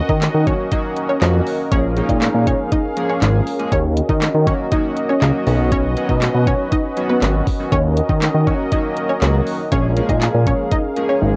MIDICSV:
0, 0, Header, 1, 6, 480
1, 0, Start_track
1, 0, Key_signature, -6, "minor"
1, 0, Tempo, 500000
1, 1649, Time_signature, 4, 2, 24, 8
1, 10908, End_track
2, 0, Start_track
2, 0, Title_t, "Analog synth pad"
2, 0, Program_c, 0, 89
2, 0, Note_on_c, 0, 61, 82
2, 0, Note_on_c, 0, 66, 83
2, 0, Note_on_c, 0, 70, 78
2, 0, Note_on_c, 0, 75, 97
2, 1611, Note_off_c, 0, 66, 0
2, 1611, Note_off_c, 0, 75, 0
2, 1651, Note_on_c, 0, 68, 79
2, 1651, Note_on_c, 0, 77, 91
2, 3551, Note_off_c, 0, 68, 0
2, 3551, Note_off_c, 0, 77, 0
2, 3571, Note_on_c, 0, 66, 74
2, 3571, Note_on_c, 0, 75, 96
2, 5211, Note_off_c, 0, 70, 0
2, 5249, Note_on_c, 0, 71, 79
2, 7372, Note_off_c, 0, 75, 0
2, 7388, Note_off_c, 0, 71, 0
2, 7410, Note_on_c, 0, 70, 78
2, 7410, Note_on_c, 0, 75, 94
2, 9292, Note_off_c, 0, 66, 0
2, 9311, Note_off_c, 0, 70, 0
2, 9311, Note_off_c, 0, 75, 0
2, 9330, Note_on_c, 0, 68, 78
2, 9330, Note_on_c, 0, 70, 79
2, 9330, Note_on_c, 0, 77, 93
2, 10908, Note_off_c, 0, 61, 0
2, 10908, Note_off_c, 0, 68, 0
2, 10908, Note_off_c, 0, 70, 0
2, 10908, Note_off_c, 0, 77, 0
2, 10908, End_track
3, 0, Start_track
3, 0, Title_t, "Synth pluck"
3, 0, Program_c, 1, 84
3, 91, Note_on_c, 1, 75, 77
3, 98, Note_on_c, 1, 63, 59
3, 173, Note_off_c, 1, 75, 0
3, 178, Note_off_c, 1, 63, 0
3, 451, Note_on_c, 1, 73, 88
3, 459, Note_on_c, 1, 61, 66
3, 617, Note_off_c, 1, 73, 0
3, 622, Note_off_c, 1, 61, 0
3, 691, Note_on_c, 1, 75, 80
3, 698, Note_on_c, 1, 63, 64
3, 773, Note_off_c, 1, 75, 0
3, 778, Note_off_c, 1, 63, 0
3, 1050, Note_on_c, 1, 73, 78
3, 1058, Note_on_c, 1, 61, 58
3, 1216, Note_off_c, 1, 73, 0
3, 1221, Note_off_c, 1, 61, 0
3, 1650, Note_on_c, 1, 73, 115
3, 1658, Note_on_c, 1, 61, 87
3, 1733, Note_off_c, 1, 73, 0
3, 1738, Note_off_c, 1, 61, 0
3, 2010, Note_on_c, 1, 75, 72
3, 2018, Note_on_c, 1, 63, 55
3, 2093, Note_off_c, 1, 75, 0
3, 2098, Note_off_c, 1, 63, 0
3, 2371, Note_on_c, 1, 73, 94
3, 2378, Note_on_c, 1, 61, 69
3, 2536, Note_off_c, 1, 73, 0
3, 2541, Note_off_c, 1, 61, 0
3, 2611, Note_on_c, 1, 75, 88
3, 2619, Note_on_c, 1, 63, 69
3, 2694, Note_off_c, 1, 75, 0
3, 2699, Note_off_c, 1, 63, 0
3, 2971, Note_on_c, 1, 73, 77
3, 2978, Note_on_c, 1, 61, 61
3, 3053, Note_off_c, 1, 73, 0
3, 3058, Note_off_c, 1, 61, 0
3, 3571, Note_on_c, 1, 73, 109
3, 3578, Note_on_c, 1, 61, 81
3, 3653, Note_off_c, 1, 73, 0
3, 3658, Note_off_c, 1, 61, 0
3, 3930, Note_on_c, 1, 75, 77
3, 3937, Note_on_c, 1, 63, 59
3, 4013, Note_off_c, 1, 75, 0
3, 4018, Note_off_c, 1, 63, 0
3, 4289, Note_on_c, 1, 73, 87
3, 4297, Note_on_c, 1, 61, 69
3, 4455, Note_off_c, 1, 73, 0
3, 4460, Note_off_c, 1, 61, 0
3, 4529, Note_on_c, 1, 75, 83
3, 4537, Note_on_c, 1, 63, 65
3, 4612, Note_off_c, 1, 75, 0
3, 4618, Note_off_c, 1, 63, 0
3, 4889, Note_on_c, 1, 73, 75
3, 4897, Note_on_c, 1, 61, 60
3, 5055, Note_off_c, 1, 73, 0
3, 5060, Note_off_c, 1, 61, 0
3, 5490, Note_on_c, 1, 73, 114
3, 5497, Note_on_c, 1, 61, 88
3, 5573, Note_off_c, 1, 73, 0
3, 5577, Note_off_c, 1, 61, 0
3, 5850, Note_on_c, 1, 75, 73
3, 5857, Note_on_c, 1, 63, 57
3, 5933, Note_off_c, 1, 75, 0
3, 5938, Note_off_c, 1, 63, 0
3, 6210, Note_on_c, 1, 73, 97
3, 6218, Note_on_c, 1, 61, 72
3, 6376, Note_off_c, 1, 73, 0
3, 6381, Note_off_c, 1, 61, 0
3, 6450, Note_on_c, 1, 75, 90
3, 6458, Note_on_c, 1, 63, 70
3, 6533, Note_off_c, 1, 75, 0
3, 6538, Note_off_c, 1, 63, 0
3, 6810, Note_on_c, 1, 71, 78
3, 6818, Note_on_c, 1, 59, 60
3, 6893, Note_off_c, 1, 71, 0
3, 6898, Note_off_c, 1, 59, 0
3, 7410, Note_on_c, 1, 73, 106
3, 7418, Note_on_c, 1, 61, 85
3, 7493, Note_off_c, 1, 73, 0
3, 7498, Note_off_c, 1, 61, 0
3, 7771, Note_on_c, 1, 75, 74
3, 7779, Note_on_c, 1, 63, 59
3, 7853, Note_off_c, 1, 75, 0
3, 7858, Note_off_c, 1, 63, 0
3, 8130, Note_on_c, 1, 73, 84
3, 8138, Note_on_c, 1, 61, 68
3, 8295, Note_off_c, 1, 73, 0
3, 8301, Note_off_c, 1, 61, 0
3, 8370, Note_on_c, 1, 75, 82
3, 8378, Note_on_c, 1, 63, 65
3, 8453, Note_off_c, 1, 75, 0
3, 8458, Note_off_c, 1, 63, 0
3, 8729, Note_on_c, 1, 73, 76
3, 8737, Note_on_c, 1, 61, 59
3, 8895, Note_off_c, 1, 73, 0
3, 8900, Note_off_c, 1, 61, 0
3, 9329, Note_on_c, 1, 73, 109
3, 9337, Note_on_c, 1, 61, 89
3, 9412, Note_off_c, 1, 73, 0
3, 9417, Note_off_c, 1, 61, 0
3, 9690, Note_on_c, 1, 75, 74
3, 9698, Note_on_c, 1, 63, 57
3, 9773, Note_off_c, 1, 75, 0
3, 9778, Note_off_c, 1, 63, 0
3, 10050, Note_on_c, 1, 73, 89
3, 10058, Note_on_c, 1, 61, 71
3, 10216, Note_off_c, 1, 73, 0
3, 10221, Note_off_c, 1, 61, 0
3, 10289, Note_on_c, 1, 75, 90
3, 10296, Note_on_c, 1, 63, 71
3, 10372, Note_off_c, 1, 75, 0
3, 10377, Note_off_c, 1, 63, 0
3, 10649, Note_on_c, 1, 73, 76
3, 10657, Note_on_c, 1, 61, 63
3, 10732, Note_off_c, 1, 73, 0
3, 10737, Note_off_c, 1, 61, 0
3, 10908, End_track
4, 0, Start_track
4, 0, Title_t, "Analog polysynth"
4, 0, Program_c, 2, 90
4, 447, Note_on_c, 2, 51, 73
4, 449, Note_on_c, 2, 54, 70
4, 449, Note_on_c, 2, 58, 67
4, 451, Note_on_c, 2, 61, 68
4, 452, Note_on_c, 2, 66, 82
4, 634, Note_off_c, 2, 51, 0
4, 635, Note_off_c, 2, 54, 0
4, 635, Note_off_c, 2, 58, 0
4, 636, Note_off_c, 2, 61, 0
4, 637, Note_off_c, 2, 66, 0
4, 687, Note_on_c, 2, 51, 85
4, 688, Note_on_c, 2, 54, 77
4, 690, Note_on_c, 2, 58, 83
4, 691, Note_on_c, 2, 61, 77
4, 692, Note_on_c, 2, 66, 96
4, 1060, Note_off_c, 2, 51, 0
4, 1061, Note_off_c, 2, 54, 0
4, 1061, Note_off_c, 2, 58, 0
4, 1062, Note_off_c, 2, 61, 0
4, 1063, Note_off_c, 2, 66, 0
4, 1167, Note_on_c, 2, 51, 86
4, 1169, Note_on_c, 2, 54, 82
4, 1169, Note_on_c, 2, 58, 75
4, 1171, Note_on_c, 2, 61, 79
4, 1172, Note_on_c, 2, 66, 93
4, 1540, Note_off_c, 2, 51, 0
4, 1541, Note_off_c, 2, 54, 0
4, 1541, Note_off_c, 2, 58, 0
4, 1542, Note_off_c, 2, 61, 0
4, 1542, Note_off_c, 2, 66, 0
4, 1647, Note_on_c, 2, 53, 86
4, 1648, Note_on_c, 2, 56, 76
4, 1649, Note_on_c, 2, 58, 75
4, 1651, Note_on_c, 2, 61, 78
4, 1652, Note_on_c, 2, 68, 89
4, 1834, Note_off_c, 2, 53, 0
4, 1835, Note_off_c, 2, 56, 0
4, 1835, Note_off_c, 2, 58, 0
4, 1836, Note_off_c, 2, 61, 0
4, 1837, Note_off_c, 2, 68, 0
4, 1887, Note_on_c, 2, 53, 88
4, 1888, Note_on_c, 2, 56, 82
4, 1889, Note_on_c, 2, 58, 80
4, 1891, Note_on_c, 2, 61, 79
4, 1892, Note_on_c, 2, 63, 95
4, 2631, Note_off_c, 2, 53, 0
4, 2632, Note_off_c, 2, 56, 0
4, 2633, Note_off_c, 2, 58, 0
4, 2634, Note_off_c, 2, 61, 0
4, 2634, Note_off_c, 2, 63, 0
4, 2847, Note_on_c, 2, 53, 84
4, 2848, Note_on_c, 2, 56, 81
4, 2849, Note_on_c, 2, 58, 82
4, 2851, Note_on_c, 2, 61, 77
4, 2852, Note_on_c, 2, 68, 95
4, 3313, Note_off_c, 2, 53, 0
4, 3314, Note_off_c, 2, 56, 0
4, 3314, Note_off_c, 2, 58, 0
4, 3315, Note_off_c, 2, 61, 0
4, 3315, Note_off_c, 2, 68, 0
4, 3446, Note_on_c, 2, 53, 81
4, 3448, Note_on_c, 2, 56, 68
4, 3449, Note_on_c, 2, 58, 71
4, 3450, Note_on_c, 2, 61, 71
4, 3451, Note_on_c, 2, 68, 87
4, 3568, Note_off_c, 2, 53, 0
4, 3569, Note_off_c, 2, 56, 0
4, 3569, Note_off_c, 2, 58, 0
4, 3570, Note_off_c, 2, 61, 0
4, 3570, Note_off_c, 2, 68, 0
4, 4286, Note_on_c, 2, 51, 76
4, 4287, Note_on_c, 2, 54, 73
4, 4289, Note_on_c, 2, 58, 69
4, 4290, Note_on_c, 2, 61, 67
4, 4291, Note_on_c, 2, 66, 85
4, 4474, Note_off_c, 2, 51, 0
4, 4474, Note_off_c, 2, 54, 0
4, 4475, Note_off_c, 2, 58, 0
4, 4476, Note_off_c, 2, 61, 0
4, 4476, Note_off_c, 2, 66, 0
4, 4526, Note_on_c, 2, 51, 86
4, 4527, Note_on_c, 2, 54, 83
4, 4529, Note_on_c, 2, 58, 77
4, 4530, Note_on_c, 2, 61, 76
4, 4531, Note_on_c, 2, 66, 94
4, 4900, Note_off_c, 2, 51, 0
4, 4900, Note_off_c, 2, 54, 0
4, 4901, Note_off_c, 2, 58, 0
4, 4901, Note_off_c, 2, 61, 0
4, 4902, Note_off_c, 2, 66, 0
4, 5006, Note_on_c, 2, 51, 89
4, 5007, Note_on_c, 2, 54, 77
4, 5009, Note_on_c, 2, 58, 82
4, 5010, Note_on_c, 2, 61, 79
4, 5011, Note_on_c, 2, 66, 96
4, 5235, Note_off_c, 2, 51, 0
4, 5236, Note_off_c, 2, 54, 0
4, 5239, Note_off_c, 2, 61, 0
4, 5240, Note_off_c, 2, 66, 0
4, 5246, Note_on_c, 2, 51, 97
4, 5248, Note_on_c, 2, 54, 88
4, 5249, Note_off_c, 2, 58, 0
4, 5249, Note_on_c, 2, 59, 92
4, 5250, Note_on_c, 2, 61, 94
4, 5251, Note_on_c, 2, 66, 108
4, 5632, Note_off_c, 2, 51, 0
4, 5633, Note_off_c, 2, 54, 0
4, 5633, Note_off_c, 2, 59, 0
4, 5634, Note_off_c, 2, 61, 0
4, 5634, Note_off_c, 2, 66, 0
4, 5726, Note_on_c, 2, 51, 88
4, 5728, Note_on_c, 2, 54, 79
4, 5729, Note_on_c, 2, 59, 77
4, 5730, Note_on_c, 2, 61, 81
4, 5731, Note_on_c, 2, 66, 93
4, 6471, Note_off_c, 2, 51, 0
4, 6472, Note_off_c, 2, 54, 0
4, 6473, Note_off_c, 2, 59, 0
4, 6473, Note_off_c, 2, 61, 0
4, 6474, Note_off_c, 2, 66, 0
4, 6687, Note_on_c, 2, 51, 86
4, 6688, Note_on_c, 2, 54, 78
4, 6689, Note_on_c, 2, 59, 79
4, 6690, Note_on_c, 2, 61, 78
4, 6692, Note_on_c, 2, 66, 94
4, 7153, Note_off_c, 2, 51, 0
4, 7154, Note_off_c, 2, 54, 0
4, 7154, Note_off_c, 2, 59, 0
4, 7155, Note_off_c, 2, 61, 0
4, 7155, Note_off_c, 2, 66, 0
4, 7286, Note_on_c, 2, 51, 78
4, 7288, Note_on_c, 2, 54, 69
4, 7289, Note_on_c, 2, 59, 68
4, 7290, Note_on_c, 2, 61, 73
4, 7291, Note_on_c, 2, 66, 85
4, 7408, Note_off_c, 2, 51, 0
4, 7409, Note_off_c, 2, 54, 0
4, 7409, Note_off_c, 2, 59, 0
4, 7410, Note_off_c, 2, 61, 0
4, 7411, Note_off_c, 2, 66, 0
4, 8127, Note_on_c, 2, 51, 74
4, 8129, Note_on_c, 2, 54, 66
4, 8130, Note_on_c, 2, 58, 69
4, 8131, Note_on_c, 2, 61, 70
4, 8132, Note_on_c, 2, 66, 85
4, 8314, Note_off_c, 2, 51, 0
4, 8315, Note_off_c, 2, 54, 0
4, 8316, Note_off_c, 2, 58, 0
4, 8316, Note_off_c, 2, 61, 0
4, 8317, Note_off_c, 2, 66, 0
4, 8367, Note_on_c, 2, 51, 90
4, 8368, Note_on_c, 2, 54, 80
4, 8369, Note_on_c, 2, 58, 78
4, 8370, Note_on_c, 2, 61, 84
4, 8371, Note_on_c, 2, 66, 92
4, 8740, Note_off_c, 2, 51, 0
4, 8740, Note_off_c, 2, 54, 0
4, 8741, Note_off_c, 2, 58, 0
4, 8742, Note_off_c, 2, 61, 0
4, 8742, Note_off_c, 2, 66, 0
4, 8847, Note_on_c, 2, 51, 84
4, 8848, Note_on_c, 2, 54, 77
4, 8849, Note_on_c, 2, 58, 79
4, 8851, Note_on_c, 2, 61, 81
4, 8852, Note_on_c, 2, 66, 96
4, 9220, Note_off_c, 2, 51, 0
4, 9221, Note_off_c, 2, 54, 0
4, 9221, Note_off_c, 2, 58, 0
4, 9222, Note_off_c, 2, 61, 0
4, 9222, Note_off_c, 2, 66, 0
4, 9326, Note_on_c, 2, 53, 82
4, 9328, Note_on_c, 2, 56, 76
4, 9329, Note_on_c, 2, 58, 79
4, 9330, Note_on_c, 2, 61, 78
4, 9331, Note_on_c, 2, 68, 93
4, 9514, Note_off_c, 2, 53, 0
4, 9514, Note_off_c, 2, 56, 0
4, 9515, Note_off_c, 2, 58, 0
4, 9516, Note_off_c, 2, 61, 0
4, 9516, Note_off_c, 2, 68, 0
4, 9567, Note_on_c, 2, 53, 86
4, 9568, Note_on_c, 2, 56, 82
4, 9569, Note_on_c, 2, 58, 80
4, 9570, Note_on_c, 2, 61, 79
4, 9571, Note_on_c, 2, 68, 97
4, 10311, Note_off_c, 2, 53, 0
4, 10312, Note_off_c, 2, 56, 0
4, 10313, Note_off_c, 2, 58, 0
4, 10313, Note_off_c, 2, 61, 0
4, 10314, Note_off_c, 2, 68, 0
4, 10527, Note_on_c, 2, 53, 83
4, 10529, Note_on_c, 2, 56, 80
4, 10530, Note_on_c, 2, 58, 77
4, 10531, Note_on_c, 2, 61, 81
4, 10532, Note_on_c, 2, 68, 96
4, 10908, Note_off_c, 2, 53, 0
4, 10908, Note_off_c, 2, 56, 0
4, 10908, Note_off_c, 2, 58, 0
4, 10908, Note_off_c, 2, 61, 0
4, 10908, Note_off_c, 2, 68, 0
4, 10908, End_track
5, 0, Start_track
5, 0, Title_t, "Analog synth bass"
5, 0, Program_c, 3, 38
5, 87, Note_on_c, 3, 51, 104
5, 274, Note_off_c, 3, 51, 0
5, 330, Note_on_c, 3, 51, 94
5, 516, Note_off_c, 3, 51, 0
5, 1170, Note_on_c, 3, 41, 97
5, 1356, Note_off_c, 3, 41, 0
5, 1650, Note_on_c, 3, 34, 118
5, 1929, Note_off_c, 3, 34, 0
5, 2007, Note_on_c, 3, 46, 102
5, 2194, Note_off_c, 3, 46, 0
5, 2250, Note_on_c, 3, 46, 89
5, 2436, Note_off_c, 3, 46, 0
5, 3090, Note_on_c, 3, 32, 99
5, 3276, Note_off_c, 3, 32, 0
5, 3570, Note_on_c, 3, 39, 114
5, 3849, Note_off_c, 3, 39, 0
5, 3927, Note_on_c, 3, 51, 104
5, 4114, Note_off_c, 3, 51, 0
5, 4170, Note_on_c, 3, 51, 93
5, 4356, Note_off_c, 3, 51, 0
5, 5010, Note_on_c, 3, 37, 96
5, 5103, Note_off_c, 3, 37, 0
5, 5249, Note_on_c, 3, 35, 101
5, 5714, Note_off_c, 3, 35, 0
5, 5847, Note_on_c, 3, 47, 101
5, 6034, Note_off_c, 3, 47, 0
5, 6090, Note_on_c, 3, 47, 88
5, 6276, Note_off_c, 3, 47, 0
5, 6930, Note_on_c, 3, 32, 102
5, 7116, Note_off_c, 3, 32, 0
5, 7410, Note_on_c, 3, 39, 112
5, 7689, Note_off_c, 3, 39, 0
5, 7767, Note_on_c, 3, 51, 105
5, 7954, Note_off_c, 3, 51, 0
5, 8010, Note_on_c, 3, 51, 93
5, 8196, Note_off_c, 3, 51, 0
5, 8850, Note_on_c, 3, 37, 99
5, 9036, Note_off_c, 3, 37, 0
5, 9330, Note_on_c, 3, 34, 115
5, 9609, Note_off_c, 3, 34, 0
5, 9687, Note_on_c, 3, 46, 109
5, 9874, Note_off_c, 3, 46, 0
5, 9930, Note_on_c, 3, 46, 89
5, 10116, Note_off_c, 3, 46, 0
5, 10770, Note_on_c, 3, 32, 98
5, 10908, Note_off_c, 3, 32, 0
5, 10908, End_track
6, 0, Start_track
6, 0, Title_t, "Drums"
6, 87, Note_on_c, 9, 36, 101
6, 183, Note_off_c, 9, 36, 0
6, 208, Note_on_c, 9, 39, 120
6, 209, Note_on_c, 9, 38, 96
6, 209, Note_on_c, 9, 42, 101
6, 304, Note_off_c, 9, 39, 0
6, 305, Note_off_c, 9, 38, 0
6, 305, Note_off_c, 9, 42, 0
6, 451, Note_on_c, 9, 36, 101
6, 451, Note_on_c, 9, 42, 80
6, 547, Note_off_c, 9, 36, 0
6, 547, Note_off_c, 9, 42, 0
6, 689, Note_on_c, 9, 42, 91
6, 691, Note_on_c, 9, 36, 97
6, 785, Note_off_c, 9, 42, 0
6, 787, Note_off_c, 9, 36, 0
6, 929, Note_on_c, 9, 42, 78
6, 1025, Note_off_c, 9, 42, 0
6, 1170, Note_on_c, 9, 39, 117
6, 1171, Note_on_c, 9, 38, 96
6, 1172, Note_on_c, 9, 42, 100
6, 1266, Note_off_c, 9, 39, 0
6, 1267, Note_off_c, 9, 38, 0
6, 1268, Note_off_c, 9, 42, 0
6, 1410, Note_on_c, 9, 46, 68
6, 1506, Note_off_c, 9, 46, 0
6, 1649, Note_on_c, 9, 42, 108
6, 1650, Note_on_c, 9, 36, 121
6, 1745, Note_off_c, 9, 42, 0
6, 1746, Note_off_c, 9, 36, 0
6, 1889, Note_on_c, 9, 42, 79
6, 1985, Note_off_c, 9, 42, 0
6, 2007, Note_on_c, 9, 36, 99
6, 2011, Note_on_c, 9, 42, 56
6, 2103, Note_off_c, 9, 36, 0
6, 2107, Note_off_c, 9, 42, 0
6, 2129, Note_on_c, 9, 39, 120
6, 2130, Note_on_c, 9, 38, 100
6, 2130, Note_on_c, 9, 42, 99
6, 2225, Note_off_c, 9, 39, 0
6, 2226, Note_off_c, 9, 38, 0
6, 2226, Note_off_c, 9, 42, 0
6, 2371, Note_on_c, 9, 36, 102
6, 2371, Note_on_c, 9, 42, 78
6, 2467, Note_off_c, 9, 36, 0
6, 2467, Note_off_c, 9, 42, 0
6, 2609, Note_on_c, 9, 42, 95
6, 2611, Note_on_c, 9, 36, 100
6, 2705, Note_off_c, 9, 42, 0
6, 2707, Note_off_c, 9, 36, 0
6, 2849, Note_on_c, 9, 42, 79
6, 2945, Note_off_c, 9, 42, 0
6, 3091, Note_on_c, 9, 39, 116
6, 3092, Note_on_c, 9, 38, 91
6, 3092, Note_on_c, 9, 42, 97
6, 3187, Note_off_c, 9, 39, 0
6, 3188, Note_off_c, 9, 38, 0
6, 3188, Note_off_c, 9, 42, 0
6, 3330, Note_on_c, 9, 46, 72
6, 3426, Note_off_c, 9, 46, 0
6, 3451, Note_on_c, 9, 42, 55
6, 3547, Note_off_c, 9, 42, 0
6, 3570, Note_on_c, 9, 36, 121
6, 3570, Note_on_c, 9, 42, 102
6, 3666, Note_off_c, 9, 36, 0
6, 3666, Note_off_c, 9, 42, 0
6, 3809, Note_on_c, 9, 42, 81
6, 3905, Note_off_c, 9, 42, 0
6, 3927, Note_on_c, 9, 36, 96
6, 4023, Note_off_c, 9, 36, 0
6, 4048, Note_on_c, 9, 39, 126
6, 4050, Note_on_c, 9, 38, 99
6, 4050, Note_on_c, 9, 42, 105
6, 4144, Note_off_c, 9, 39, 0
6, 4146, Note_off_c, 9, 38, 0
6, 4146, Note_off_c, 9, 42, 0
6, 4291, Note_on_c, 9, 36, 102
6, 4291, Note_on_c, 9, 42, 77
6, 4387, Note_off_c, 9, 36, 0
6, 4387, Note_off_c, 9, 42, 0
6, 4528, Note_on_c, 9, 42, 90
6, 4530, Note_on_c, 9, 36, 102
6, 4624, Note_off_c, 9, 42, 0
6, 4626, Note_off_c, 9, 36, 0
6, 4768, Note_on_c, 9, 42, 78
6, 4864, Note_off_c, 9, 42, 0
6, 5010, Note_on_c, 9, 39, 114
6, 5011, Note_on_c, 9, 38, 94
6, 5011, Note_on_c, 9, 42, 97
6, 5106, Note_off_c, 9, 39, 0
6, 5107, Note_off_c, 9, 38, 0
6, 5107, Note_off_c, 9, 42, 0
6, 5249, Note_on_c, 9, 46, 68
6, 5345, Note_off_c, 9, 46, 0
6, 5489, Note_on_c, 9, 42, 106
6, 5490, Note_on_c, 9, 36, 122
6, 5585, Note_off_c, 9, 42, 0
6, 5586, Note_off_c, 9, 36, 0
6, 5728, Note_on_c, 9, 42, 86
6, 5824, Note_off_c, 9, 42, 0
6, 5847, Note_on_c, 9, 36, 95
6, 5943, Note_off_c, 9, 36, 0
6, 5968, Note_on_c, 9, 39, 119
6, 5969, Note_on_c, 9, 38, 96
6, 5969, Note_on_c, 9, 42, 104
6, 6064, Note_off_c, 9, 39, 0
6, 6065, Note_off_c, 9, 38, 0
6, 6065, Note_off_c, 9, 42, 0
6, 6211, Note_on_c, 9, 36, 103
6, 6211, Note_on_c, 9, 42, 81
6, 6307, Note_off_c, 9, 36, 0
6, 6307, Note_off_c, 9, 42, 0
6, 6449, Note_on_c, 9, 42, 90
6, 6451, Note_on_c, 9, 36, 105
6, 6545, Note_off_c, 9, 42, 0
6, 6547, Note_off_c, 9, 36, 0
6, 6688, Note_on_c, 9, 42, 77
6, 6784, Note_off_c, 9, 42, 0
6, 6931, Note_on_c, 9, 39, 111
6, 6932, Note_on_c, 9, 38, 97
6, 6932, Note_on_c, 9, 42, 98
6, 7027, Note_off_c, 9, 39, 0
6, 7028, Note_off_c, 9, 38, 0
6, 7028, Note_off_c, 9, 42, 0
6, 7169, Note_on_c, 9, 36, 103
6, 7169, Note_on_c, 9, 46, 68
6, 7265, Note_off_c, 9, 36, 0
6, 7265, Note_off_c, 9, 46, 0
6, 7409, Note_on_c, 9, 42, 102
6, 7410, Note_on_c, 9, 36, 121
6, 7505, Note_off_c, 9, 42, 0
6, 7506, Note_off_c, 9, 36, 0
6, 7648, Note_on_c, 9, 42, 85
6, 7744, Note_off_c, 9, 42, 0
6, 7767, Note_on_c, 9, 36, 100
6, 7863, Note_off_c, 9, 36, 0
6, 7888, Note_on_c, 9, 39, 123
6, 7889, Note_on_c, 9, 38, 97
6, 7889, Note_on_c, 9, 42, 103
6, 7984, Note_off_c, 9, 39, 0
6, 7985, Note_off_c, 9, 38, 0
6, 7985, Note_off_c, 9, 42, 0
6, 8131, Note_on_c, 9, 36, 103
6, 8131, Note_on_c, 9, 42, 79
6, 8227, Note_off_c, 9, 36, 0
6, 8227, Note_off_c, 9, 42, 0
6, 8368, Note_on_c, 9, 42, 92
6, 8370, Note_on_c, 9, 36, 102
6, 8464, Note_off_c, 9, 42, 0
6, 8466, Note_off_c, 9, 36, 0
6, 8608, Note_on_c, 9, 42, 80
6, 8704, Note_off_c, 9, 42, 0
6, 8850, Note_on_c, 9, 39, 115
6, 8851, Note_on_c, 9, 38, 97
6, 8851, Note_on_c, 9, 42, 99
6, 8946, Note_off_c, 9, 39, 0
6, 8947, Note_off_c, 9, 38, 0
6, 8947, Note_off_c, 9, 42, 0
6, 9089, Note_on_c, 9, 46, 68
6, 9185, Note_off_c, 9, 46, 0
6, 9329, Note_on_c, 9, 42, 104
6, 9330, Note_on_c, 9, 36, 124
6, 9425, Note_off_c, 9, 42, 0
6, 9426, Note_off_c, 9, 36, 0
6, 9568, Note_on_c, 9, 42, 84
6, 9664, Note_off_c, 9, 42, 0
6, 9687, Note_on_c, 9, 36, 93
6, 9690, Note_on_c, 9, 42, 56
6, 9783, Note_off_c, 9, 36, 0
6, 9786, Note_off_c, 9, 42, 0
6, 9808, Note_on_c, 9, 39, 124
6, 9809, Note_on_c, 9, 38, 95
6, 9809, Note_on_c, 9, 42, 104
6, 9904, Note_off_c, 9, 39, 0
6, 9905, Note_off_c, 9, 38, 0
6, 9905, Note_off_c, 9, 42, 0
6, 10050, Note_on_c, 9, 42, 79
6, 10051, Note_on_c, 9, 36, 102
6, 10146, Note_off_c, 9, 42, 0
6, 10147, Note_off_c, 9, 36, 0
6, 10288, Note_on_c, 9, 42, 94
6, 10291, Note_on_c, 9, 36, 102
6, 10384, Note_off_c, 9, 42, 0
6, 10387, Note_off_c, 9, 36, 0
6, 10528, Note_on_c, 9, 42, 80
6, 10624, Note_off_c, 9, 42, 0
6, 10908, End_track
0, 0, End_of_file